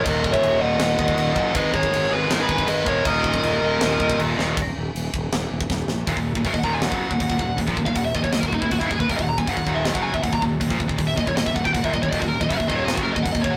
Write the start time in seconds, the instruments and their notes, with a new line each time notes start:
0.03 fingered electric bass D#1, distorted electric guitar D#2 A#2 D#3, lead electric guitar A#4 D#5, kick, crash
0.24 kick
0.32 lead electric guitar C#5 E5, kick
0.42 fingered electric bass D#1, crash
0.60 fingered electric bass D#1, distorted electric guitar D#2 A#2 D#3, lead electric guitar D#5 F#5
0.80 fingered electric bass D#1, snare, crash
0.99 fingered electric bass D#1, kick
1.08 kick
1.16 fingered electric bass D#1, distorted electric guitar D#2 A#2 D#3, crash
1.35 fingered electric bass F#1, distorted electric guitar D#2 A#2 D#3, lead electric guitar D#5 F#5, kick
1.53 fingered electric bass G#1, distorted electric guitar G#2 D#3 G#3, lead electric guitar B4 D#5, kick, crash
1.74 fingered electric bass G#1, lead electric guitar G#4 C#5, kick
1.83 kick
1.91 fingered electric bass G#1, crash
2.10 fingered electric bass G#1, distorted electric guitar G#2 D#3 G#3, lead electric guitar G#4 B4
2.30 fingered electric bass G#1, lead electric guitar D#4 A#4, snare, crash
2.39 lead electric guitar G#4 B4
2.49 fingered electric bass G#1, kick
2.58 kick
2.67 fingered electric bass G#1, distorted electric guitar G#2 D#3 G#3, lead electric guitar B4 D#5, crash
2.86 fingered electric bass E1, distorted electric guitar G#2 D#3 G#3, lead electric guitar A#4 C#5, kick
3.04 fingered electric bass D#1, distorted electric guitar D#2 A#2 D#3, lead electric guitar A#4 D#5, kick, crash
3.24 kick
3.34 kick
3.43 fingered electric bass D#1, crash
3.61 fingered electric bass D#1, distorted electric guitar D#2 A#2 D#3
3.81 fingered electric bass D#1, snare, crash
4.00 fingered electric bass D#1, kick
4.10 kick
4.18 fingered electric bass D#1, distorted electric guitar D#2 A#2 D#3, crash
4.37 fingered electric bass D#1, distorted electric guitar D#2 A#2 D#3, snare
4.57 fingered electric bass D#1, kick, crash
4.76 fingered electric bass D#1
4.95 fingered electric bass D#1, crash
5.14 fingered electric bass D#1, kick
5.32 fingered electric bass D#1, snare, crash
5.51 fingered electric bass D#1
5.61 kick
5.70 fingered electric bass D#1, kick, snare
5.88 fingered electric bass A#1, snare
6.07 fingered electric bass D#1, distorted electric guitar D#2 A#2, kick, open hi-hat
6.17 fingered electric bass D#1, distorted electric guitar D#2 A#2, kick
6.35 fingered electric bass D#1, distorted electric guitar D#2 A#2, kick
6.45 fingered electric bass F#1, distorted electric guitar F#2 C#3, lead electric guitar A#4, kick, open hi-hat
6.53 fingered electric bass D#1, distorted electric guitar D#2 A#2, lead electric guitar D#5, kick
6.59 lead electric guitar F#5
6.63 fingered electric bass D#1, distorted electric guitar D#2 A#2 D#3, lead electric guitar A#5, kick
6.74 lead electric guitar G#5
6.82 lead electric guitar F#5, snare, open hi-hat
6.92 fingered electric bass F#1, distorted electric guitar F#2 C#3 F#3, kick
7.11 fingered electric bass D#1, distorted electric guitar D#2 A#2, kick
7.20 fingered electric bass D#1, distorted electric guitar D#2 A#2, kick, open hi-hat
7.29 fingered electric bass D#1, distorted electric guitar D#2 A#2, kick
7.38 fingered electric bass D#1, distorted electric guitar D#2 A#2, kick
7.57 fingered electric bass D#1, distorted electric guitar D#2 A#2, kick, open hi-hat
7.66 fingered electric bass A#1, distorted electric guitar A#2 F3, kick
7.76 fingered electric bass D#1, distorted electric guitar D#2 A#2, kick
7.86 fingered electric bass D#1, distorted electric guitar D#2 A#2, lead electric guitar F5, kick
7.95 fingered electric bass D#1, distorted electric guitar D#2 A#2, lead electric guitar F#5, kick, open hi-hat
8.05 lead electric guitar E5
8.15 fingered electric bass D#1, distorted electric guitar D#2 A#2, lead electric guitar D#5, kick
8.23 fingered electric bass D#1, distorted electric guitar D#2 A#2, lead electric guitar C#5, kick
8.32 fingered electric bass D#1, distorted electric guitar D#2 A#2, lead electric guitar D#5, snare, open hi-hat
8.39 lead electric guitar A#4
8.43 fingered electric bass D#1, distorted electric guitar D#2 A#2, kick
8.48 lead electric guitar F#4
8.53 fingered electric bass D#1, distorted electric guitar D#2 A#2, lead electric guitar D#4, kick
8.62 fingered electric bass D#1, distorted electric guitar D#2 A#2, lead electric guitar E4, kick
8.71 fingered electric bass D#1, distorted electric guitar D#2 A#2, lead electric guitar F#4, kick, open hi-hat
8.80 fingered electric bass D#1, distorted electric guitar D#2 A#2, lead electric guitar E4, kick
8.90 fingered electric bass D#1, distorted electric guitar D#2 A#2, lead electric guitar G#4, kick
9.00 fingered electric bass D#1, distorted electric guitar D#2 A#2, lead electric guitar B4, kick
9.09 fingered electric bass D#1, distorted electric guitar D#2 A#2, lead electric guitar A#4, kick, open hi-hat
9.16 fingered electric bass D#1, distorted electric guitar D#2 A#2, lead electric guitar D#5, kick
9.23 lead electric guitar F#5
9.29 lead electric guitar A#5
9.37 fingered electric bass D#1, distorted electric guitar D#2 A#2, lead electric guitar G#5, kick
9.47 fingered electric bass F#1, distorted electric guitar F#2 C#3, lead electric guitar F#5, kick, open hi-hat
9.56 fingered electric bass D#1, distorted electric guitar D#2 A#2, kick
9.66 fingered electric bass D#1, distorted electric guitar D#2 A#2 D#3, kick
9.75 lead electric guitar E5
9.85 lead electric guitar D#5, snare, open hi-hat
9.94 fingered electric bass F#1, distorted electric guitar F#2 C#3 F#3, lead electric guitar F#5, kick
10.02 lead electric guitar G#5
10.13 fingered electric bass D#1, distorted electric guitar D#2 A#2, lead electric guitar E5, kick
10.22 fingered electric bass D#1, distorted electric guitar D#2 A#2, lead electric guitar F#5, kick, open hi-hat
10.32 fingered electric bass D#1, distorted electric guitar D#2 A#2, lead electric guitar A#5, kick
10.42 fingered electric bass D#1, distorted electric guitar D#2 A#2, kick
10.61 fingered electric bass D#1, distorted electric guitar D#2 A#2, kick, open hi-hat
10.69 fingered electric bass A#1, distorted electric guitar A#2 F3, kick
10.79 fingered electric bass D#1, distorted electric guitar D#2 A#2, kick
10.88 fingered electric bass D#1, distorted electric guitar D#2 A#2, kick
10.96 fingered electric bass D#1, distorted electric guitar D#2 A#2, kick, open hi-hat
11.07 lead electric guitar E5
11.16 fingered electric bass D#1, distorted electric guitar D#2 A#2, lead electric guitar D#5, kick
11.25 fingered electric bass D#1, distorted electric guitar D#2 A#2, lead electric guitar C#5, kick
11.35 fingered electric bass D#1, distorted electric guitar D#2 A#2, lead electric guitar D#5, snare, open hi-hat
11.44 fingered electric bass D#1, distorted electric guitar D#2 A#2, lead electric guitar E5, kick
11.54 fingered electric bass D#1, distorted electric guitar D#2 A#2, lead electric guitar F#5, kick
11.64 fingered electric bass D#1, distorted electric guitar D#2 A#2, lead electric guitar G5, kick
11.73 fingered electric bass D#1, distorted electric guitar D#2 A#2, lead electric guitar F#5, kick, open hi-hat
11.81 fingered electric bass D#1, distorted electric guitar D#2 A#2, lead electric guitar E5, kick
11.92 fingered electric bass D#1, distorted electric guitar D#2 A#2, lead electric guitar D#5, kick
12.02 fingered electric bass D#1, distorted electric guitar D#2 A#2, lead electric guitar C#5, kick
12.11 fingered electric bass D#1, distorted electric guitar D#2 A#2, lead electric guitar D#5, kick, open hi-hat
12.19 fingered electric bass D#1, distorted electric guitar D#2 A#2, lead electric guitar F#4, kick
12.28 lead electric guitar A#4
12.40 fingered electric bass D#1, distorted electric guitar D#2 A#2, lead electric guitar D#5, kick
12.49 fingered electric bass F#1, distorted electric guitar F#2 C#3, lead electric guitar F#5, kick, open hi-hat
12.57 fingered electric bass D#1, distorted electric guitar D#2 A#2, lead electric guitar E5, kick
12.68 fingered electric bass D#1, distorted electric guitar D#2 A#2 D#3, lead electric guitar D#5, kick
12.76 lead electric guitar C#5
12.84 lead electric guitar D#5
12.88 snare, open hi-hat
12.94 fingered electric bass F#1, distorted electric guitar F#2 C#3 F#3, lead electric guitar F#4, kick
13.03 lead electric guitar A#4
13.12 distorted electric guitar D#2 A#2, lead electric guitar D#5
13.16 fingered electric bass D#1, kick
13.23 fingered electric bass D#1, distorted electric guitar D#2 A#2, lead electric guitar F#5, kick, open hi-hat
13.32 fingered electric bass D#1, distorted electric guitar D#2 A#2, lead electric guitar D#5, kick
13.42 fingered electric bass D#1, distorted electric guitar D#2 A#2, lead electric guitar C#5, kick
13.51 lead electric guitar F#5